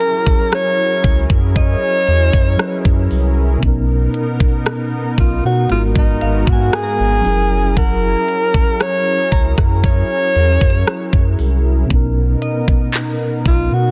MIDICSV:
0, 0, Header, 1, 8, 480
1, 0, Start_track
1, 0, Tempo, 1034483
1, 1684, Time_signature, 4, 2, 24, 8
1, 6455, End_track
2, 0, Start_track
2, 0, Title_t, "Synth bell"
2, 0, Program_c, 0, 98
2, 726, Note_on_c, 0, 75, 73
2, 1299, Note_off_c, 0, 75, 0
2, 2884, Note_on_c, 0, 77, 60
2, 3027, Note_on_c, 0, 80, 55
2, 3171, Note_on_c, 0, 82, 53
2, 3458, Note_off_c, 0, 77, 0
2, 3590, Note_off_c, 0, 80, 0
2, 3604, Note_on_c, 0, 78, 55
2, 3721, Note_off_c, 0, 82, 0
2, 4178, Note_off_c, 0, 78, 0
2, 4323, Note_on_c, 0, 82, 77
2, 4897, Note_off_c, 0, 82, 0
2, 5762, Note_on_c, 0, 75, 66
2, 6337, Note_off_c, 0, 75, 0
2, 6455, End_track
3, 0, Start_track
3, 0, Title_t, "Alto saxophone"
3, 0, Program_c, 1, 65
3, 0, Note_on_c, 1, 70, 109
3, 249, Note_off_c, 1, 70, 0
3, 254, Note_on_c, 1, 73, 114
3, 585, Note_off_c, 1, 73, 0
3, 735, Note_on_c, 1, 73, 119
3, 1431, Note_off_c, 1, 73, 0
3, 2414, Note_on_c, 1, 65, 81
3, 2521, Note_off_c, 1, 65, 0
3, 2532, Note_on_c, 1, 66, 86
3, 2640, Note_off_c, 1, 66, 0
3, 2652, Note_on_c, 1, 65, 88
3, 2704, Note_off_c, 1, 65, 0
3, 2773, Note_on_c, 1, 63, 82
3, 3011, Note_on_c, 1, 66, 95
3, 3018, Note_off_c, 1, 63, 0
3, 3131, Note_on_c, 1, 68, 107
3, 3138, Note_off_c, 1, 66, 0
3, 3607, Note_off_c, 1, 68, 0
3, 3610, Note_on_c, 1, 70, 110
3, 4093, Note_on_c, 1, 73, 117
3, 4100, Note_off_c, 1, 70, 0
3, 4443, Note_off_c, 1, 73, 0
3, 4573, Note_on_c, 1, 73, 115
3, 5270, Note_off_c, 1, 73, 0
3, 6254, Note_on_c, 1, 65, 87
3, 6374, Note_on_c, 1, 66, 90
3, 6381, Note_off_c, 1, 65, 0
3, 6455, Note_off_c, 1, 66, 0
3, 6455, End_track
4, 0, Start_track
4, 0, Title_t, "Analog synth pad"
4, 0, Program_c, 2, 89
4, 0, Note_on_c, 2, 54, 83
4, 0, Note_on_c, 2, 61, 78
4, 0, Note_on_c, 2, 64, 79
4, 0, Note_on_c, 2, 68, 76
4, 0, Note_on_c, 2, 70, 75
4, 1664, Note_off_c, 2, 54, 0
4, 1664, Note_off_c, 2, 61, 0
4, 1664, Note_off_c, 2, 64, 0
4, 1664, Note_off_c, 2, 68, 0
4, 1664, Note_off_c, 2, 70, 0
4, 1680, Note_on_c, 2, 63, 95
4, 1680, Note_on_c, 2, 70, 87
4, 1682, Note_on_c, 2, 59, 78
4, 2632, Note_off_c, 2, 70, 0
4, 2633, Note_off_c, 2, 59, 0
4, 2643, Note_on_c, 2, 59, 87
4, 2643, Note_on_c, 2, 70, 76
4, 2644, Note_on_c, 2, 56, 79
4, 2644, Note_on_c, 2, 66, 73
4, 3345, Note_off_c, 2, 63, 0
4, 3356, Note_off_c, 2, 59, 0
4, 3356, Note_off_c, 2, 70, 0
4, 3357, Note_off_c, 2, 56, 0
4, 3357, Note_off_c, 2, 66, 0
4, 3361, Note_on_c, 2, 61, 82
4, 3361, Note_on_c, 2, 64, 82
4, 3361, Note_on_c, 2, 70, 96
4, 3362, Note_on_c, 2, 54, 89
4, 3363, Note_on_c, 2, 68, 78
4, 5504, Note_off_c, 2, 54, 0
4, 5504, Note_off_c, 2, 61, 0
4, 5504, Note_off_c, 2, 64, 0
4, 5504, Note_off_c, 2, 70, 0
4, 5505, Note_off_c, 2, 68, 0
4, 5526, Note_on_c, 2, 59, 78
4, 5526, Note_on_c, 2, 63, 94
4, 5526, Note_on_c, 2, 70, 84
4, 6455, Note_off_c, 2, 59, 0
4, 6455, Note_off_c, 2, 63, 0
4, 6455, Note_off_c, 2, 70, 0
4, 6455, End_track
5, 0, Start_track
5, 0, Title_t, "Tine electric piano"
5, 0, Program_c, 3, 4
5, 0, Control_c, 3, 64, 127
5, 0, Note_on_c, 3, 54, 69
5, 0, Note_on_c, 3, 61, 63
5, 0, Note_on_c, 3, 64, 68
5, 0, Note_on_c, 3, 68, 67
5, 0, Note_on_c, 3, 70, 75
5, 1173, Note_off_c, 3, 54, 0
5, 1179, Note_off_c, 3, 61, 0
5, 1184, Note_off_c, 3, 64, 0
5, 1190, Note_off_c, 3, 68, 0
5, 1191, Note_on_c, 3, 54, 52
5, 1196, Note_off_c, 3, 70, 0
5, 1198, Note_on_c, 3, 61, 43
5, 1203, Note_on_c, 3, 64, 47
5, 1208, Note_on_c, 3, 68, 44
5, 1214, Note_on_c, 3, 71, 42
5, 1239, Note_off_c, 3, 71, 0
5, 1244, Note_on_c, 3, 73, 57
5, 1661, Note_on_c, 3, 47, 80
5, 1672, Note_on_c, 3, 59, 72
5, 1677, Note_off_c, 3, 54, 0
5, 1678, Note_off_c, 3, 61, 0
5, 1683, Note_off_c, 3, 64, 0
5, 1683, Note_on_c, 3, 61, 76
5, 1686, Note_off_c, 3, 68, 0
5, 1690, Control_c, 3, 64, 0
5, 1695, Note_on_c, 3, 63, 73
5, 1704, Note_off_c, 3, 73, 0
5, 1706, Note_on_c, 3, 70, 88
5, 1769, Control_c, 3, 64, 127
5, 2614, Note_off_c, 3, 47, 0
5, 2619, Note_off_c, 3, 59, 0
5, 2625, Note_off_c, 3, 61, 0
5, 2631, Note_off_c, 3, 63, 0
5, 2634, Note_on_c, 3, 44, 70
5, 2636, Note_off_c, 3, 70, 0
5, 2640, Note_on_c, 3, 56, 61
5, 2645, Note_on_c, 3, 59, 62
5, 2649, Control_c, 3, 64, 0
5, 2651, Note_on_c, 3, 66, 61
5, 2655, Note_on_c, 3, 68, 61
5, 2680, Note_off_c, 3, 68, 0
5, 2686, Note_on_c, 3, 70, 73
5, 2729, Control_c, 3, 64, 127
5, 3342, Note_on_c, 3, 54, 75
5, 3354, Note_on_c, 3, 61, 66
5, 3359, Note_off_c, 3, 44, 0
5, 3362, Note_off_c, 3, 56, 0
5, 3365, Note_off_c, 3, 59, 0
5, 3365, Note_on_c, 3, 64, 66
5, 3367, Note_off_c, 3, 66, 0
5, 3370, Control_c, 3, 64, 0
5, 3376, Note_on_c, 3, 68, 63
5, 3381, Note_off_c, 3, 70, 0
5, 3387, Note_on_c, 3, 70, 79
5, 3451, Control_c, 3, 64, 127
5, 5254, Note_off_c, 3, 54, 0
5, 5260, Note_off_c, 3, 61, 0
5, 5266, Note_off_c, 3, 64, 0
5, 5271, Note_off_c, 3, 68, 0
5, 5277, Note_off_c, 3, 70, 0
5, 5502, Note_on_c, 3, 47, 79
5, 5513, Note_on_c, 3, 59, 71
5, 5525, Note_on_c, 3, 61, 70
5, 5529, Control_c, 3, 64, 0
5, 5536, Note_on_c, 3, 63, 69
5, 5546, Note_on_c, 3, 70, 89
5, 5613, Control_c, 3, 64, 127
5, 6454, Note_off_c, 3, 47, 0
5, 6455, Note_off_c, 3, 59, 0
5, 6455, Note_off_c, 3, 61, 0
5, 6455, Note_off_c, 3, 63, 0
5, 6455, Note_off_c, 3, 70, 0
5, 6455, End_track
6, 0, Start_track
6, 0, Title_t, "Sub bass"
6, 0, Program_c, 4, 38
6, 485, Note_on_c, 4, 37, 99
6, 589, Note_off_c, 4, 37, 0
6, 604, Note_on_c, 4, 42, 97
6, 813, Note_off_c, 4, 42, 0
6, 964, Note_on_c, 4, 40, 93
6, 1069, Note_off_c, 4, 40, 0
6, 1085, Note_on_c, 4, 42, 91
6, 1189, Note_off_c, 4, 42, 0
6, 1324, Note_on_c, 4, 42, 89
6, 1429, Note_off_c, 4, 42, 0
6, 1445, Note_on_c, 4, 36, 91
6, 1654, Note_off_c, 4, 36, 0
6, 1684, Note_on_c, 4, 35, 112
6, 1893, Note_off_c, 4, 35, 0
6, 2404, Note_on_c, 4, 35, 100
6, 2509, Note_off_c, 4, 35, 0
6, 2528, Note_on_c, 4, 47, 104
6, 2631, Note_off_c, 4, 47, 0
6, 2648, Note_on_c, 4, 32, 95
6, 2855, Note_off_c, 4, 32, 0
6, 2887, Note_on_c, 4, 32, 91
6, 2990, Note_off_c, 4, 32, 0
6, 3005, Note_on_c, 4, 44, 111
6, 3109, Note_off_c, 4, 44, 0
6, 3247, Note_on_c, 4, 32, 91
6, 3350, Note_off_c, 4, 32, 0
6, 3367, Note_on_c, 4, 30, 100
6, 3784, Note_off_c, 4, 30, 0
6, 4326, Note_on_c, 4, 37, 96
6, 4430, Note_off_c, 4, 37, 0
6, 4445, Note_on_c, 4, 42, 103
6, 4654, Note_off_c, 4, 42, 0
6, 4806, Note_on_c, 4, 40, 102
6, 4909, Note_off_c, 4, 40, 0
6, 4926, Note_on_c, 4, 42, 92
6, 5030, Note_off_c, 4, 42, 0
6, 5165, Note_on_c, 4, 42, 89
6, 5269, Note_off_c, 4, 42, 0
6, 5286, Note_on_c, 4, 36, 93
6, 5494, Note_off_c, 4, 36, 0
6, 5526, Note_on_c, 4, 35, 114
6, 5734, Note_off_c, 4, 35, 0
6, 6245, Note_on_c, 4, 35, 95
6, 6349, Note_off_c, 4, 35, 0
6, 6365, Note_on_c, 4, 47, 101
6, 6455, Note_off_c, 4, 47, 0
6, 6455, End_track
7, 0, Start_track
7, 0, Title_t, "Downlifter"
7, 0, Program_c, 5, 103
7, 0, Note_on_c, 5, 60, 81
7, 1683, Note_off_c, 5, 60, 0
7, 6455, End_track
8, 0, Start_track
8, 0, Title_t, "Drums"
8, 3, Note_on_c, 9, 42, 76
8, 50, Note_off_c, 9, 42, 0
8, 123, Note_on_c, 9, 36, 104
8, 169, Note_off_c, 9, 36, 0
8, 242, Note_on_c, 9, 42, 70
8, 244, Note_on_c, 9, 37, 106
8, 288, Note_off_c, 9, 42, 0
8, 290, Note_off_c, 9, 37, 0
8, 483, Note_on_c, 9, 36, 96
8, 484, Note_on_c, 9, 46, 60
8, 529, Note_off_c, 9, 36, 0
8, 530, Note_off_c, 9, 46, 0
8, 603, Note_on_c, 9, 36, 93
8, 649, Note_off_c, 9, 36, 0
8, 723, Note_on_c, 9, 36, 95
8, 723, Note_on_c, 9, 42, 76
8, 769, Note_off_c, 9, 36, 0
8, 770, Note_off_c, 9, 42, 0
8, 963, Note_on_c, 9, 42, 74
8, 1009, Note_off_c, 9, 42, 0
8, 1083, Note_on_c, 9, 36, 90
8, 1129, Note_off_c, 9, 36, 0
8, 1203, Note_on_c, 9, 37, 98
8, 1203, Note_on_c, 9, 42, 58
8, 1249, Note_off_c, 9, 42, 0
8, 1250, Note_off_c, 9, 37, 0
8, 1323, Note_on_c, 9, 36, 89
8, 1369, Note_off_c, 9, 36, 0
8, 1443, Note_on_c, 9, 46, 71
8, 1489, Note_off_c, 9, 46, 0
8, 1683, Note_on_c, 9, 36, 116
8, 1683, Note_on_c, 9, 42, 78
8, 1729, Note_off_c, 9, 36, 0
8, 1729, Note_off_c, 9, 42, 0
8, 1922, Note_on_c, 9, 42, 73
8, 1968, Note_off_c, 9, 42, 0
8, 2043, Note_on_c, 9, 36, 99
8, 2089, Note_off_c, 9, 36, 0
8, 2162, Note_on_c, 9, 42, 71
8, 2164, Note_on_c, 9, 37, 107
8, 2209, Note_off_c, 9, 42, 0
8, 2210, Note_off_c, 9, 37, 0
8, 2403, Note_on_c, 9, 36, 93
8, 2404, Note_on_c, 9, 46, 60
8, 2450, Note_off_c, 9, 36, 0
8, 2451, Note_off_c, 9, 46, 0
8, 2643, Note_on_c, 9, 42, 78
8, 2689, Note_off_c, 9, 42, 0
8, 2763, Note_on_c, 9, 36, 94
8, 2810, Note_off_c, 9, 36, 0
8, 2883, Note_on_c, 9, 42, 77
8, 2930, Note_off_c, 9, 42, 0
8, 3003, Note_on_c, 9, 36, 89
8, 3050, Note_off_c, 9, 36, 0
8, 3123, Note_on_c, 9, 42, 64
8, 3124, Note_on_c, 9, 37, 104
8, 3170, Note_off_c, 9, 37, 0
8, 3170, Note_off_c, 9, 42, 0
8, 3364, Note_on_c, 9, 46, 67
8, 3411, Note_off_c, 9, 46, 0
8, 3604, Note_on_c, 9, 36, 108
8, 3604, Note_on_c, 9, 42, 80
8, 3650, Note_off_c, 9, 36, 0
8, 3651, Note_off_c, 9, 42, 0
8, 3844, Note_on_c, 9, 42, 72
8, 3890, Note_off_c, 9, 42, 0
8, 3964, Note_on_c, 9, 36, 99
8, 4010, Note_off_c, 9, 36, 0
8, 4084, Note_on_c, 9, 42, 72
8, 4086, Note_on_c, 9, 37, 108
8, 4130, Note_off_c, 9, 42, 0
8, 4132, Note_off_c, 9, 37, 0
8, 4324, Note_on_c, 9, 36, 94
8, 4325, Note_on_c, 9, 42, 83
8, 4371, Note_off_c, 9, 36, 0
8, 4371, Note_off_c, 9, 42, 0
8, 4444, Note_on_c, 9, 36, 99
8, 4446, Note_on_c, 9, 37, 63
8, 4491, Note_off_c, 9, 36, 0
8, 4493, Note_off_c, 9, 37, 0
8, 4564, Note_on_c, 9, 36, 96
8, 4565, Note_on_c, 9, 42, 75
8, 4611, Note_off_c, 9, 36, 0
8, 4611, Note_off_c, 9, 42, 0
8, 4806, Note_on_c, 9, 42, 45
8, 4852, Note_off_c, 9, 42, 0
8, 4886, Note_on_c, 9, 42, 61
8, 4924, Note_on_c, 9, 36, 91
8, 4932, Note_off_c, 9, 42, 0
8, 4966, Note_on_c, 9, 42, 74
8, 4971, Note_off_c, 9, 36, 0
8, 5012, Note_off_c, 9, 42, 0
8, 5045, Note_on_c, 9, 42, 59
8, 5046, Note_on_c, 9, 37, 105
8, 5092, Note_off_c, 9, 37, 0
8, 5092, Note_off_c, 9, 42, 0
8, 5164, Note_on_c, 9, 36, 90
8, 5211, Note_off_c, 9, 36, 0
8, 5285, Note_on_c, 9, 46, 68
8, 5331, Note_off_c, 9, 46, 0
8, 5523, Note_on_c, 9, 42, 76
8, 5524, Note_on_c, 9, 36, 114
8, 5570, Note_off_c, 9, 36, 0
8, 5570, Note_off_c, 9, 42, 0
8, 5763, Note_on_c, 9, 42, 77
8, 5809, Note_off_c, 9, 42, 0
8, 5883, Note_on_c, 9, 36, 98
8, 5930, Note_off_c, 9, 36, 0
8, 6002, Note_on_c, 9, 42, 71
8, 6004, Note_on_c, 9, 39, 112
8, 6049, Note_off_c, 9, 42, 0
8, 6050, Note_off_c, 9, 39, 0
8, 6243, Note_on_c, 9, 36, 87
8, 6244, Note_on_c, 9, 46, 59
8, 6290, Note_off_c, 9, 36, 0
8, 6290, Note_off_c, 9, 46, 0
8, 6455, End_track
0, 0, End_of_file